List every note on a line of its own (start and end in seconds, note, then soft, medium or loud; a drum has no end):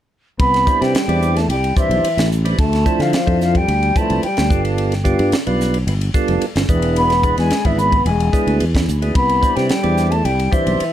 0.39 0.64 C2 medium
0.39 0.82 B3 medium
0.39 0.83 B5 medium
0.39 kick medium
0.39 ride medium
0.54 snare soft
0.54 ride medium
0.66 0.99 G3 medium
0.66 0.99 C4 medium
0.66 0.99 D4 medium
0.66 0.99 E4 medium
0.66 0.99 B4 medium
0.66 kick medium
0.66 hi-hat pedal medium
0.80 0.93 C3 medium
0.80 0.94 G3 medium
0.80 0.95 G5 medium
0.80 snare soft
0.80 ride medium
0.94 1.37 G3 medium
0.94 1.38 G5 medium
0.94 muted fretless electric bass stroke soft
0.94 snare loud
0.94 ride medium
1.08 1.45 E2 medium
1.08 1.40 G3 medium
1.08 1.40 C4 medium
1.08 1.40 D4 medium
1.08 1.41 E4 medium
1.08 1.40 D5 medium
1.08 ride medium
1.22 hi-hat pedal medium
1.36 1.49 A3 medium
1.36 1.49 A5 medium
1.36 snare soft
1.36 ride medium
1.49 1.74 C2 medium
1.49 1.76 G3 medium
1.49 1.56 E4 soft
1.49 1.56 D5 soft
1.49 1.75 G5 medium
1.49 ride medium
1.64 ride medium
1.76 2.28 E3 medium
1.76 2.09 G3 medium
1.76 2.09 C4 medium
1.76 2.09 D4 medium
1.76 2.09 E4 medium
1.76 2.09 C5 medium
1.76 2.28 E5 medium
1.76 muted fretless electric bass stroke soft
1.76 kick medium
1.76 hi-hat pedal medium
1.89 2.02 B1 medium
1.89 ride medium
2.03 muted fretless electric bass stroke soft
2.03 ride medium
2.17 2.54 A1 medium
2.17 2.24 E4 soft
2.17 2.25 B4 soft
2.17 snare medium
2.17 ride medium
2.32 hi-hat pedal medium
2.45 2.59 G3 medium
2.45 2.59 C4 medium
2.45 2.59 D4 medium
2.45 2.59 E4 medium
2.45 2.59 B4 medium
2.45 ride medium
2.58 2.83 D2 medium
2.58 3.05 A3 medium
2.58 3.02 A5 medium
2.58 kick medium
2.58 ride medium
2.73 snare soft
2.73 ride soft
2.86 3.18 F3 medium
2.86 3.18 C4 medium
2.86 3.18 D4 medium
2.86 3.18 E4 medium
2.86 3.18 A4 medium
2.86 kick medium
2.86 hi-hat pedal medium
2.99 3.12 D3 medium
2.99 3.15 F3 soft
2.99 3.13 F5 medium
2.99 snare soft
2.99 ride soft
3.13 3.41 F3 medium
3.13 3.39 F5 medium
3.13 muted fretless electric bass stroke soft
3.13 snare loud
3.13 ride medium
3.26 3.64 F2 medium
3.26 3.59 F3 medium
3.26 3.59 C4 medium
3.26 3.59 D4 medium
3.26 3.59 E4 medium
3.26 3.59 A4 medium
3.26 kick medium
3.26 ride soft
3.41 3.61 F3 medium
3.41 3.58 F5 medium
3.41 snare soft
3.41 hi-hat pedal medium
3.55 3.98 G5 medium
3.55 kick medium
3.55 ride soft
3.59 4.00 G3 medium
3.68 3.93 D2 loud
3.68 3.75 E4 soft
3.68 3.75 G4 soft
3.68 ride medium
3.83 ride soft
3.95 4.27 F3 medium
3.95 4.24 A3 medium
3.95 4.27 C4 medium
3.95 4.28 D4 medium
3.95 4.27 E4 medium
3.95 4.28 B4 medium
3.95 4.23 A5 medium
3.95 muted fretless electric bass stroke soft
3.95 kick medium
3.95 hi-hat pedal medium
4.10 4.22 C2 medium
4.10 ride soft
4.23 4.63 G3 medium
4.23 4.62 G5 medium
4.23 ride medium
4.37 4.50 D2 medium
4.37 4.43 E4 soft
4.37 4.43 C5 soft
4.37 snare medium
4.37 ride soft
4.50 5.15 G1 medium
4.50 4.94 G3 medium
4.50 4.94 B3 medium
4.50 4.94 D4 medium
4.50 4.94 F4 medium
4.50 4.94 A4 medium
4.50 kick medium
4.50 hi-hat pedal medium
4.65 ride medium
4.78 ride medium
4.92 snare soft
4.92 ride medium
5.04 5.36 G3 medium
5.04 5.37 B3 medium
5.04 5.37 D4 medium
5.04 5.37 F4 medium
5.04 5.37 G4 loud
5.04 kick medium
5.04 hi-hat pedal medium
5.19 5.31 G2 medium
5.19 ride medium
5.32 muted fretless electric bass stroke soft
5.32 snare medium
5.32 ride medium
5.46 5.83 B1 medium
5.46 5.78 G3 medium
5.46 5.78 B3 medium
5.46 5.78 D4 medium
5.46 5.78 F4 medium
5.46 5.78 B4 medium
5.46 ride medium
5.61 snare soft
5.61 hi-hat pedal medium
5.74 ride medium
5.87 6.12 G1 medium
5.87 5.94 F4 soft
5.87 5.94 B4 soft
5.87 ride medium
6.01 ride medium
6.14 6.46 G3 medium
6.14 6.46 B3 medium
6.14 6.46 D4 medium
6.14 6.46 F4 medium
6.14 6.46 A4 loud
6.14 muted fretless electric bass stroke soft
6.14 kick medium
6.14 hi-hat pedal medium
6.28 6.41 F1 medium
6.28 ride medium
6.42 ride medium
6.56 6.68 G1 medium
6.56 6.62 F4 soft
6.56 6.62 B4 soft
6.56 snare medium
6.56 ride medium
6.69 7.34 E1 medium
6.69 7.13 G#3 medium
6.69 7.13 B3 medium
6.69 7.13 D4 medium
6.69 7.13 E4 medium
6.69 7.13 B4 medium
6.69 kick medium
6.69 hi-hat pedal medium
6.82 ride medium
6.96 7.35 B3 medium
6.96 7.35 B5 medium
6.96 ride medium
7.10 snare soft
7.10 ride medium
7.23 7.55 G#3 medium
7.23 7.55 B3 medium
7.23 7.55 D4 medium
7.23 7.56 E4 medium
7.23 7.56 B4 medium
7.23 kick medium
7.23 hi-hat pedal medium
7.38 7.50 E2 medium
7.38 7.68 G#3 medium
7.38 7.66 G#5 medium
7.38 snare soft
7.38 ride medium
7.50 muted fretless electric bass stroke soft
7.50 snare medium
7.50 ride medium
7.65 8.02 G#1 medium
7.65 7.82 E3 medium
7.65 7.97 G#3 medium
7.65 7.97 B3 medium
7.65 7.97 D4 medium
7.65 7.97 E4 medium
7.65 7.97 B4 medium
7.65 7.79 E5 medium
7.65 kick medium
7.65 ride medium
7.77 8.07 B3 medium
7.77 8.04 B5 medium
7.77 hi-hat pedal medium
7.92 kick medium
7.92 ride soft
8.05 8.30 E1 medium
8.05 8.12 E4 soft
8.05 8.12 B4 soft
8.05 8.56 G#5 medium
8.05 ride medium
8.10 8.59 G#3 medium
8.20 ride medium
8.33 8.65 G#3 medium
8.33 8.65 B3 medium
8.33 8.65 D4 medium
8.33 8.65 E4 medium
8.33 8.65 G#4 medium
8.33 kick medium
8.33 hi-hat pedal medium
8.47 8.59 D2 medium
8.47 ride soft
8.60 8.85 E2 medium
8.60 ride medium
8.75 8.81 E4 soft
8.75 8.81 B4 soft
8.75 kick medium
8.75 snare medium
8.75 ride soft
8.88 9.13 D2 medium
8.88 hi-hat pedal medium
9.02 9.15 G#3 medium
9.02 9.15 B3 medium
9.02 9.15 D4 medium
9.02 9.15 E4 medium
9.02 9.16 G#4 medium
9.02 ride medium
9.14 9.40 C2 medium
9.14 9.60 B3 medium
9.14 9.57 B5 medium
9.14 kick medium
9.14 ride medium
9.29 ride medium
9.41 9.74 G3 medium
9.41 9.74 C4 medium
9.41 9.74 D4 medium
9.41 9.74 E4 medium
9.41 9.74 B4 medium
9.41 kick medium
9.41 hi-hat pedal medium
9.55 9.69 C3 medium
9.55 9.71 G3 medium
9.55 9.68 G5 medium
9.55 snare soft
9.55 ride medium
9.68 10.13 G3 medium
9.68 10.12 G5 medium
9.68 muted fretless electric bass stroke soft
9.68 snare loud
9.68 ride medium
9.83 10.21 E2 medium
9.83 10.15 G3 medium
9.83 10.15 C4 medium
9.83 10.16 D4 medium
9.83 10.15 E4 medium
9.83 10.16 D5 medium
9.83 ride soft
9.97 snare soft
9.97 hi-hat pedal medium
10.11 10.28 A3 medium
10.11 10.26 A5 medium
10.11 ride soft
10.24 10.50 C2 medium
10.24 10.56 G3 medium
10.24 10.32 E4 soft
10.24 10.32 A4 soft
10.24 10.54 G5 medium
10.24 ride medium
10.39 ride medium
10.51 10.93 E3 medium
10.51 10.84 G3 medium
10.51 10.84 C4 medium
10.51 10.84 D4 medium
10.51 10.84 E4 medium
10.51 10.84 C5 medium
10.51 10.93 E5 medium
10.51 kick medium
10.51 hi-hat pedal medium
10.67 10.79 B1 medium
10.67 ride medium
10.80 muted fretless electric bass stroke soft
10.80 ride medium